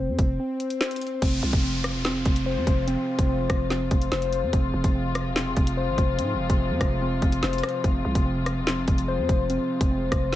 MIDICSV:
0, 0, Header, 1, 7, 480
1, 0, Start_track
1, 0, Key_signature, -4, "minor"
1, 0, Tempo, 413793
1, 1416, Time_signature, 4, 2, 24, 8
1, 12012, End_track
2, 0, Start_track
2, 0, Title_t, "Synth keys"
2, 0, Program_c, 0, 88
2, 0, Note_on_c, 0, 60, 82
2, 0, Note_on_c, 0, 72, 87
2, 444, Note_off_c, 0, 60, 0
2, 458, Note_on_c, 0, 60, 86
2, 922, Note_off_c, 0, 72, 0
2, 936, Note_on_c, 0, 72, 90
2, 1401, Note_off_c, 0, 60, 0
2, 1415, Note_on_c, 0, 60, 91
2, 1416, Note_off_c, 0, 72, 0
2, 1879, Note_off_c, 0, 60, 0
2, 1893, Note_on_c, 0, 60, 82
2, 2364, Note_off_c, 0, 60, 0
2, 2378, Note_on_c, 0, 60, 92
2, 2853, Note_on_c, 0, 72, 91
2, 3320, Note_off_c, 0, 60, 0
2, 3334, Note_on_c, 0, 60, 106
2, 3800, Note_off_c, 0, 60, 0
2, 3814, Note_on_c, 0, 60, 90
2, 4279, Note_off_c, 0, 60, 0
2, 4293, Note_on_c, 0, 60, 97
2, 4764, Note_off_c, 0, 72, 0
2, 4778, Note_on_c, 0, 72, 101
2, 5246, Note_off_c, 0, 60, 0
2, 5258, Note_off_c, 0, 72, 0
2, 5260, Note_on_c, 0, 60, 100
2, 5729, Note_off_c, 0, 60, 0
2, 5743, Note_on_c, 0, 60, 86
2, 6200, Note_off_c, 0, 60, 0
2, 6214, Note_on_c, 0, 60, 83
2, 6694, Note_on_c, 0, 72, 94
2, 7163, Note_off_c, 0, 60, 0
2, 7176, Note_on_c, 0, 60, 97
2, 7638, Note_off_c, 0, 60, 0
2, 7652, Note_on_c, 0, 60, 86
2, 8124, Note_off_c, 0, 60, 0
2, 8138, Note_on_c, 0, 60, 89
2, 8604, Note_off_c, 0, 72, 0
2, 8618, Note_on_c, 0, 72, 93
2, 9081, Note_off_c, 0, 60, 0
2, 9095, Note_on_c, 0, 60, 96
2, 9097, Note_off_c, 0, 72, 0
2, 9561, Note_off_c, 0, 60, 0
2, 9575, Note_on_c, 0, 60, 83
2, 10044, Note_off_c, 0, 60, 0
2, 10058, Note_on_c, 0, 60, 92
2, 10535, Note_on_c, 0, 72, 93
2, 11001, Note_off_c, 0, 60, 0
2, 11015, Note_on_c, 0, 60, 108
2, 11481, Note_off_c, 0, 60, 0
2, 11495, Note_on_c, 0, 60, 89
2, 11959, Note_off_c, 0, 60, 0
2, 11973, Note_on_c, 0, 60, 93
2, 12012, Note_off_c, 0, 60, 0
2, 12012, Note_off_c, 0, 72, 0
2, 12012, End_track
3, 0, Start_track
3, 0, Title_t, "String section"
3, 0, Program_c, 1, 48
3, 1415, Note_on_c, 1, 48, 78
3, 1416, Note_on_c, 1, 53, 76
3, 1416, Note_on_c, 1, 65, 90
3, 1417, Note_on_c, 1, 56, 75
3, 5218, Note_off_c, 1, 53, 0
3, 5257, Note_on_c, 1, 53, 74
3, 12012, Note_off_c, 1, 48, 0
3, 12012, Note_off_c, 1, 53, 0
3, 12012, Note_off_c, 1, 56, 0
3, 12012, Note_off_c, 1, 65, 0
3, 12012, End_track
4, 0, Start_track
4, 0, Title_t, "808-style bass"
4, 0, Program_c, 2, 38
4, 98, Note_on_c, 2, 41, 102
4, 211, Note_off_c, 2, 41, 0
4, 216, Note_on_c, 2, 29, 103
4, 447, Note_off_c, 2, 29, 0
4, 1416, Note_on_c, 2, 29, 116
4, 1647, Note_off_c, 2, 29, 0
4, 1656, Note_on_c, 2, 36, 109
4, 1769, Note_off_c, 2, 36, 0
4, 1776, Note_on_c, 2, 29, 109
4, 2257, Note_on_c, 2, 28, 103
4, 2274, Note_off_c, 2, 29, 0
4, 2437, Note_on_c, 2, 29, 99
4, 2454, Note_off_c, 2, 28, 0
4, 2608, Note_off_c, 2, 29, 0
4, 2617, Note_on_c, 2, 29, 105
4, 2976, Note_on_c, 2, 41, 102
4, 2994, Note_off_c, 2, 29, 0
4, 3090, Note_off_c, 2, 41, 0
4, 3097, Note_on_c, 2, 29, 106
4, 3442, Note_off_c, 2, 29, 0
4, 3696, Note_on_c, 2, 29, 98
4, 4042, Note_off_c, 2, 29, 0
4, 4056, Note_on_c, 2, 29, 102
4, 4517, Note_off_c, 2, 29, 0
4, 4538, Note_on_c, 2, 29, 104
4, 4767, Note_off_c, 2, 29, 0
4, 4776, Note_on_c, 2, 29, 107
4, 5136, Note_on_c, 2, 41, 104
4, 5153, Note_off_c, 2, 29, 0
4, 5250, Note_off_c, 2, 41, 0
4, 5256, Note_on_c, 2, 29, 111
4, 5487, Note_off_c, 2, 29, 0
4, 5496, Note_on_c, 2, 29, 106
4, 5611, Note_off_c, 2, 29, 0
4, 5616, Note_on_c, 2, 29, 107
4, 6095, Note_on_c, 2, 28, 102
4, 6113, Note_off_c, 2, 29, 0
4, 6438, Note_off_c, 2, 28, 0
4, 6458, Note_on_c, 2, 29, 104
4, 6816, Note_on_c, 2, 32, 100
4, 6834, Note_off_c, 2, 29, 0
4, 6931, Note_off_c, 2, 32, 0
4, 6936, Note_on_c, 2, 29, 112
4, 7176, Note_on_c, 2, 44, 96
4, 7193, Note_off_c, 2, 29, 0
4, 7357, Note_on_c, 2, 29, 100
4, 7374, Note_off_c, 2, 44, 0
4, 7528, Note_off_c, 2, 29, 0
4, 7536, Note_on_c, 2, 29, 104
4, 7776, Note_on_c, 2, 41, 105
4, 7794, Note_off_c, 2, 29, 0
4, 7890, Note_off_c, 2, 41, 0
4, 7896, Note_on_c, 2, 29, 106
4, 8357, Note_off_c, 2, 29, 0
4, 8378, Note_on_c, 2, 29, 104
4, 8608, Note_off_c, 2, 29, 0
4, 8617, Note_on_c, 2, 29, 108
4, 8847, Note_off_c, 2, 29, 0
4, 9097, Note_on_c, 2, 29, 112
4, 9327, Note_off_c, 2, 29, 0
4, 9337, Note_on_c, 2, 36, 105
4, 9452, Note_off_c, 2, 36, 0
4, 9457, Note_on_c, 2, 29, 111
4, 9937, Note_on_c, 2, 28, 103
4, 9954, Note_off_c, 2, 29, 0
4, 10117, Note_on_c, 2, 29, 104
4, 10134, Note_off_c, 2, 28, 0
4, 10288, Note_off_c, 2, 29, 0
4, 10298, Note_on_c, 2, 29, 104
4, 10657, Note_on_c, 2, 41, 101
4, 10674, Note_off_c, 2, 29, 0
4, 10771, Note_off_c, 2, 41, 0
4, 10777, Note_on_c, 2, 29, 107
4, 11122, Note_off_c, 2, 29, 0
4, 11377, Note_on_c, 2, 29, 100
4, 11722, Note_off_c, 2, 29, 0
4, 11736, Note_on_c, 2, 29, 105
4, 12012, Note_off_c, 2, 29, 0
4, 12012, End_track
5, 0, Start_track
5, 0, Title_t, "Downlifter"
5, 0, Program_c, 3, 103
5, 1416, Note_on_c, 3, 60, 91
5, 5256, Note_off_c, 3, 60, 0
5, 12012, End_track
6, 0, Start_track
6, 0, Title_t, "Swell"
6, 0, Program_c, 4, 103
6, 0, Note_on_c, 4, 60, 90
6, 1416, Note_off_c, 4, 60, 0
6, 12012, End_track
7, 0, Start_track
7, 0, Title_t, "Drums"
7, 216, Note_on_c, 9, 36, 98
7, 216, Note_on_c, 9, 42, 75
7, 332, Note_off_c, 9, 36, 0
7, 332, Note_off_c, 9, 42, 0
7, 696, Note_on_c, 9, 42, 60
7, 812, Note_off_c, 9, 42, 0
7, 816, Note_on_c, 9, 42, 60
7, 932, Note_off_c, 9, 42, 0
7, 936, Note_on_c, 9, 38, 114
7, 1052, Note_off_c, 9, 38, 0
7, 1057, Note_on_c, 9, 42, 64
7, 1117, Note_off_c, 9, 42, 0
7, 1117, Note_on_c, 9, 42, 59
7, 1177, Note_off_c, 9, 42, 0
7, 1177, Note_on_c, 9, 42, 49
7, 1237, Note_off_c, 9, 42, 0
7, 1237, Note_on_c, 9, 42, 39
7, 1353, Note_off_c, 9, 42, 0
7, 1416, Note_on_c, 9, 36, 113
7, 1416, Note_on_c, 9, 42, 95
7, 1416, Note_on_c, 9, 49, 106
7, 1532, Note_off_c, 9, 36, 0
7, 1532, Note_off_c, 9, 42, 0
7, 1532, Note_off_c, 9, 49, 0
7, 1776, Note_on_c, 9, 36, 101
7, 1776, Note_on_c, 9, 42, 92
7, 1892, Note_off_c, 9, 36, 0
7, 1892, Note_off_c, 9, 42, 0
7, 2136, Note_on_c, 9, 37, 95
7, 2136, Note_on_c, 9, 42, 76
7, 2252, Note_off_c, 9, 37, 0
7, 2252, Note_off_c, 9, 42, 0
7, 2376, Note_on_c, 9, 38, 124
7, 2492, Note_off_c, 9, 38, 0
7, 2616, Note_on_c, 9, 42, 75
7, 2617, Note_on_c, 9, 36, 103
7, 2732, Note_off_c, 9, 42, 0
7, 2733, Note_off_c, 9, 36, 0
7, 2738, Note_on_c, 9, 42, 86
7, 2854, Note_off_c, 9, 42, 0
7, 3096, Note_on_c, 9, 36, 105
7, 3098, Note_on_c, 9, 42, 86
7, 3212, Note_off_c, 9, 36, 0
7, 3214, Note_off_c, 9, 42, 0
7, 3336, Note_on_c, 9, 42, 97
7, 3452, Note_off_c, 9, 42, 0
7, 3696, Note_on_c, 9, 36, 98
7, 3696, Note_on_c, 9, 42, 85
7, 3812, Note_off_c, 9, 36, 0
7, 3812, Note_off_c, 9, 42, 0
7, 4056, Note_on_c, 9, 36, 100
7, 4057, Note_on_c, 9, 37, 96
7, 4057, Note_on_c, 9, 42, 76
7, 4172, Note_off_c, 9, 36, 0
7, 4173, Note_off_c, 9, 37, 0
7, 4173, Note_off_c, 9, 42, 0
7, 4297, Note_on_c, 9, 38, 72
7, 4413, Note_off_c, 9, 38, 0
7, 4536, Note_on_c, 9, 42, 73
7, 4538, Note_on_c, 9, 36, 98
7, 4652, Note_off_c, 9, 42, 0
7, 4654, Note_off_c, 9, 36, 0
7, 4658, Note_on_c, 9, 42, 85
7, 4774, Note_off_c, 9, 42, 0
7, 4777, Note_on_c, 9, 38, 117
7, 4893, Note_off_c, 9, 38, 0
7, 4896, Note_on_c, 9, 42, 67
7, 5012, Note_off_c, 9, 42, 0
7, 5017, Note_on_c, 9, 42, 86
7, 5133, Note_off_c, 9, 42, 0
7, 5256, Note_on_c, 9, 36, 112
7, 5256, Note_on_c, 9, 42, 93
7, 5372, Note_off_c, 9, 36, 0
7, 5372, Note_off_c, 9, 42, 0
7, 5615, Note_on_c, 9, 42, 89
7, 5616, Note_on_c, 9, 36, 98
7, 5731, Note_off_c, 9, 42, 0
7, 5732, Note_off_c, 9, 36, 0
7, 5976, Note_on_c, 9, 37, 96
7, 5976, Note_on_c, 9, 42, 77
7, 6092, Note_off_c, 9, 37, 0
7, 6092, Note_off_c, 9, 42, 0
7, 6216, Note_on_c, 9, 38, 121
7, 6332, Note_off_c, 9, 38, 0
7, 6456, Note_on_c, 9, 42, 72
7, 6458, Note_on_c, 9, 36, 98
7, 6572, Note_off_c, 9, 42, 0
7, 6574, Note_off_c, 9, 36, 0
7, 6578, Note_on_c, 9, 42, 88
7, 6694, Note_off_c, 9, 42, 0
7, 6936, Note_on_c, 9, 36, 104
7, 6937, Note_on_c, 9, 42, 86
7, 7052, Note_off_c, 9, 36, 0
7, 7053, Note_off_c, 9, 42, 0
7, 7176, Note_on_c, 9, 42, 96
7, 7292, Note_off_c, 9, 42, 0
7, 7536, Note_on_c, 9, 36, 98
7, 7536, Note_on_c, 9, 42, 90
7, 7652, Note_off_c, 9, 36, 0
7, 7652, Note_off_c, 9, 42, 0
7, 7896, Note_on_c, 9, 36, 98
7, 7896, Note_on_c, 9, 37, 93
7, 7896, Note_on_c, 9, 42, 77
7, 8012, Note_off_c, 9, 36, 0
7, 8012, Note_off_c, 9, 37, 0
7, 8012, Note_off_c, 9, 42, 0
7, 8376, Note_on_c, 9, 42, 63
7, 8378, Note_on_c, 9, 36, 100
7, 8492, Note_off_c, 9, 42, 0
7, 8494, Note_off_c, 9, 36, 0
7, 8496, Note_on_c, 9, 42, 62
7, 8612, Note_off_c, 9, 42, 0
7, 8616, Note_on_c, 9, 38, 122
7, 8732, Note_off_c, 9, 38, 0
7, 8736, Note_on_c, 9, 42, 67
7, 8796, Note_off_c, 9, 42, 0
7, 8796, Note_on_c, 9, 42, 58
7, 8856, Note_off_c, 9, 42, 0
7, 8856, Note_on_c, 9, 37, 100
7, 8856, Note_on_c, 9, 42, 48
7, 8917, Note_off_c, 9, 42, 0
7, 8917, Note_on_c, 9, 42, 39
7, 8972, Note_off_c, 9, 37, 0
7, 9033, Note_off_c, 9, 42, 0
7, 9096, Note_on_c, 9, 36, 114
7, 9096, Note_on_c, 9, 42, 96
7, 9212, Note_off_c, 9, 36, 0
7, 9212, Note_off_c, 9, 42, 0
7, 9457, Note_on_c, 9, 36, 98
7, 9457, Note_on_c, 9, 42, 89
7, 9573, Note_off_c, 9, 36, 0
7, 9573, Note_off_c, 9, 42, 0
7, 9817, Note_on_c, 9, 37, 93
7, 9817, Note_on_c, 9, 42, 73
7, 9933, Note_off_c, 9, 37, 0
7, 9933, Note_off_c, 9, 42, 0
7, 10057, Note_on_c, 9, 38, 124
7, 10173, Note_off_c, 9, 38, 0
7, 10296, Note_on_c, 9, 42, 75
7, 10298, Note_on_c, 9, 36, 98
7, 10412, Note_off_c, 9, 42, 0
7, 10414, Note_off_c, 9, 36, 0
7, 10419, Note_on_c, 9, 42, 88
7, 10535, Note_off_c, 9, 42, 0
7, 10777, Note_on_c, 9, 36, 106
7, 10778, Note_on_c, 9, 42, 85
7, 10893, Note_off_c, 9, 36, 0
7, 10894, Note_off_c, 9, 42, 0
7, 11017, Note_on_c, 9, 42, 94
7, 11133, Note_off_c, 9, 42, 0
7, 11377, Note_on_c, 9, 36, 99
7, 11377, Note_on_c, 9, 42, 90
7, 11493, Note_off_c, 9, 36, 0
7, 11493, Note_off_c, 9, 42, 0
7, 11737, Note_on_c, 9, 36, 98
7, 11737, Note_on_c, 9, 37, 91
7, 11737, Note_on_c, 9, 42, 79
7, 11853, Note_off_c, 9, 36, 0
7, 11853, Note_off_c, 9, 37, 0
7, 11853, Note_off_c, 9, 42, 0
7, 12012, End_track
0, 0, End_of_file